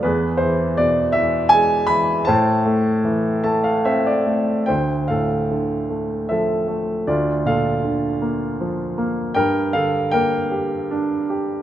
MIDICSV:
0, 0, Header, 1, 2, 480
1, 0, Start_track
1, 0, Key_signature, 0, "minor"
1, 0, Tempo, 751880
1, 26, Time_signature, 3, 2, 24, 8
1, 1945, Tempo, 816327
1, 2915, Key_signature, -1, "minor"
1, 3865, Tempo, 766284
1, 7191, End_track
2, 0, Start_track
2, 0, Title_t, "Grand piano"
2, 0, Program_c, 0, 0
2, 0, Control_c, 0, 64, 127
2, 18, Note_on_c, 0, 71, 71
2, 24, Note_on_c, 0, 40, 70
2, 30, Note_on_c, 0, 68, 55
2, 34, Control_c, 0, 64, 0
2, 155, Control_c, 0, 64, 127
2, 239, Note_on_c, 0, 72, 76
2, 243, Note_off_c, 0, 71, 0
2, 258, Note_on_c, 0, 52, 53
2, 472, Note_off_c, 0, 72, 0
2, 494, Note_on_c, 0, 74, 83
2, 499, Note_on_c, 0, 47, 48
2, 717, Note_off_c, 0, 68, 0
2, 718, Note_on_c, 0, 76, 88
2, 726, Note_off_c, 0, 52, 0
2, 735, Note_on_c, 0, 52, 56
2, 743, Note_off_c, 0, 74, 0
2, 952, Note_on_c, 0, 80, 101
2, 973, Note_off_c, 0, 76, 0
2, 979, Note_on_c, 0, 56, 62
2, 1184, Note_off_c, 0, 80, 0
2, 1191, Note_on_c, 0, 83, 103
2, 1200, Note_off_c, 0, 52, 0
2, 1210, Note_on_c, 0, 52, 60
2, 1427, Note_off_c, 0, 47, 0
2, 1428, Note_off_c, 0, 40, 0
2, 1435, Note_on_c, 0, 81, 93
2, 1440, Note_off_c, 0, 56, 0
2, 1444, Note_off_c, 0, 52, 0
2, 1450, Note_off_c, 0, 83, 0
2, 1451, Note_on_c, 0, 72, 68
2, 1457, Note_on_c, 0, 45, 82
2, 1462, Control_c, 0, 64, 0
2, 1559, Control_c, 0, 64, 127
2, 1697, Note_on_c, 0, 57, 58
2, 1941, Note_on_c, 0, 52, 57
2, 2165, Note_off_c, 0, 81, 0
2, 2166, Note_off_c, 0, 57, 0
2, 2174, Note_on_c, 0, 57, 64
2, 2174, Note_on_c, 0, 81, 76
2, 2288, Note_off_c, 0, 81, 0
2, 2293, Note_on_c, 0, 77, 74
2, 2410, Note_off_c, 0, 77, 0
2, 2418, Note_on_c, 0, 76, 79
2, 2419, Note_on_c, 0, 60, 68
2, 2535, Note_off_c, 0, 76, 0
2, 2544, Note_on_c, 0, 74, 73
2, 2644, Note_off_c, 0, 72, 0
2, 2651, Note_off_c, 0, 57, 0
2, 2660, Note_on_c, 0, 57, 59
2, 2890, Note_off_c, 0, 52, 0
2, 2890, Note_off_c, 0, 74, 0
2, 2893, Note_off_c, 0, 45, 0
2, 2894, Note_on_c, 0, 79, 72
2, 2899, Note_off_c, 0, 60, 0
2, 2903, Note_off_c, 0, 57, 0
2, 2906, Note_on_c, 0, 72, 61
2, 2915, Note_on_c, 0, 38, 57
2, 2921, Control_c, 0, 64, 0
2, 3013, Control_c, 0, 64, 127
2, 3135, Note_off_c, 0, 72, 0
2, 3139, Note_on_c, 0, 77, 71
2, 3153, Note_on_c, 0, 45, 43
2, 3154, Note_off_c, 0, 79, 0
2, 3154, Note_on_c, 0, 69, 55
2, 3391, Note_on_c, 0, 50, 46
2, 3623, Note_on_c, 0, 57, 45
2, 3839, Note_off_c, 0, 69, 0
2, 3851, Note_on_c, 0, 76, 65
2, 3863, Note_on_c, 0, 53, 48
2, 3867, Note_on_c, 0, 69, 54
2, 3877, Note_off_c, 0, 77, 0
2, 4084, Note_off_c, 0, 45, 0
2, 4087, Note_off_c, 0, 57, 0
2, 4097, Note_on_c, 0, 57, 49
2, 4321, Note_off_c, 0, 76, 0
2, 4326, Note_off_c, 0, 50, 0
2, 4328, Note_off_c, 0, 38, 0
2, 4330, Note_off_c, 0, 69, 0
2, 4338, Note_off_c, 0, 53, 0
2, 4338, Note_off_c, 0, 57, 0
2, 4342, Note_on_c, 0, 74, 68
2, 4343, Note_on_c, 0, 38, 63
2, 4352, Note_on_c, 0, 65, 56
2, 4361, Control_c, 0, 64, 0
2, 4468, Control_c, 0, 64, 127
2, 4569, Note_off_c, 0, 74, 0
2, 4574, Note_off_c, 0, 65, 0
2, 4581, Note_on_c, 0, 46, 48
2, 4588, Note_on_c, 0, 77, 83
2, 4596, Note_on_c, 0, 69, 57
2, 4824, Note_on_c, 0, 50, 47
2, 5058, Note_on_c, 0, 58, 51
2, 5304, Note_on_c, 0, 53, 55
2, 5519, Note_off_c, 0, 46, 0
2, 5522, Note_off_c, 0, 77, 0
2, 5526, Note_off_c, 0, 58, 0
2, 5526, Note_off_c, 0, 69, 0
2, 5535, Note_on_c, 0, 58, 57
2, 5756, Note_off_c, 0, 38, 0
2, 5758, Note_off_c, 0, 50, 0
2, 5765, Note_on_c, 0, 79, 84
2, 5769, Note_off_c, 0, 53, 0
2, 5772, Note_off_c, 0, 58, 0
2, 5773, Note_on_c, 0, 43, 68
2, 5776, Note_on_c, 0, 70, 71
2, 5794, Control_c, 0, 64, 0
2, 5889, Control_c, 0, 64, 127
2, 5994, Note_off_c, 0, 79, 0
2, 6000, Note_off_c, 0, 70, 0
2, 6007, Note_on_c, 0, 77, 86
2, 6015, Note_on_c, 0, 50, 55
2, 6023, Note_on_c, 0, 69, 61
2, 6235, Note_off_c, 0, 77, 0
2, 6244, Note_off_c, 0, 69, 0
2, 6247, Note_on_c, 0, 79, 91
2, 6260, Note_on_c, 0, 70, 64
2, 6261, Note_on_c, 0, 58, 51
2, 6497, Note_on_c, 0, 67, 53
2, 6745, Note_on_c, 0, 62, 55
2, 6953, Note_off_c, 0, 50, 0
2, 6979, Note_off_c, 0, 67, 0
2, 6989, Note_on_c, 0, 67, 52
2, 7191, Note_off_c, 0, 43, 0
2, 7191, Note_off_c, 0, 58, 0
2, 7191, Note_off_c, 0, 62, 0
2, 7191, Note_off_c, 0, 67, 0
2, 7191, Note_off_c, 0, 70, 0
2, 7191, Note_off_c, 0, 79, 0
2, 7191, End_track
0, 0, End_of_file